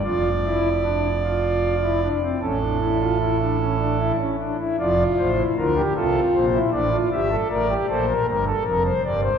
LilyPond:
<<
  \new Staff \with { instrumentName = "Pipe organ" } { \time 12/8 \key d \minor \tempo 4. = 51 << { d''2. a'2~ a'8 r8 | d''8 c''8 bes'8 a'8 c''8 d''8 e''8 d''8 c''8 bes'16 a'16 bes'16 c''16 d''16 c''16 | } \\ { f'8 e'8 d'8 f'8. e'16 d'16 c'16 cis'16 d'16 e'16 f'16 e'16 d'16 cis'16 d'16 e'16 cis'16 d'16 e'16 | f'8. e'16 f'16 g'16 f'8. e'16 d'16 f'16 g'16 a'16 bes'16 g'16 a'16 bes'4.~ bes'16 | } >> }
  \new Staff \with { instrumentName = "Pipe organ" } { \clef bass \time 12/8 \key d \minor <f,, f,>2. <a,, a,>2~ <a,, a,>8 r8 | <f,, f,>8 <a,, a,>8 <d, d>8 <c, c>8 <bes,, bes,>8 <a,, a,>8 <g,, g,>8 <a,, a,>8 <bes,, bes,>8 <g,, g,>8 <f,, f,>8 <g,, g,>8 | }
>>